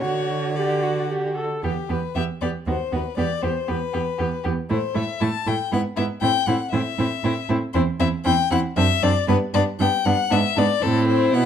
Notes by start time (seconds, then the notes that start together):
0.01 D3 F#4 C#5
0.55 F#4 G4 D5
0.83 F#4
1.10 G4
1.37 A4
1.63 E2 B3 G4
1.89 E2 B3 G4 B4
2.15 E2 B3 G4 E5
2.41 E2 B3 G4 D5
2.67 D#2 B3 F#4 C5
2.92 D#2 B3 F#4 B4
3.17 E2 B3 G4 D5
3.42 E2 B3 G4 C5
3.68 E2 B3 G4 B4
3.93 E2 B3 G4
4.18 E2 B3 G4
4.44 E2 B3 G4
4.70 A2 A3 E4 C5
4.95 A2 A3 E4 E5
5.20 A2 A3 E4 A5
5.46 A2 A3 E4 G5
5.72 G#2 B3 E4 F#5
5.96 G#2 B3 E4 E5
6.21 A2 C4 E4 G5
6.46 A2 C4 E4 F#5
6.71 A2 C4 E4 E5
6.99 A2 C4 E4
7.24 A2 C4 E4
7.49 A2 C4 E4
7.73 E2 C4 E4 C5
8.00 E2 C4 E4 E5
8.25 E2 C4 E4 G5
8.51 E2 C4 E4 F#5
8.76 F#2 C4 D4 E5
9.03 F#2 C4 D4 D5
9.28 G2 B3 D4 B4
9.54 G2 B3 D4 D5
9.80 G2 B3 D4 G5
10.05 G2 B3 D4 F#5
10.30 G#2 B3 D4 E5
10.56 G#2 B3 D4 D5
10.82 A2 C4 E4 A4
11.07 C5
11.33 B2 B3 F#5